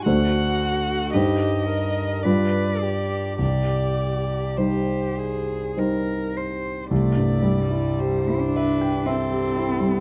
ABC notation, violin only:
X:1
M:3/4
L:1/8
Q:1/4=54
K:Cm
V:1 name="Violin"
^f2 e2 d2 | d2 c2 z2 | [K:C] d2 c B A2 |]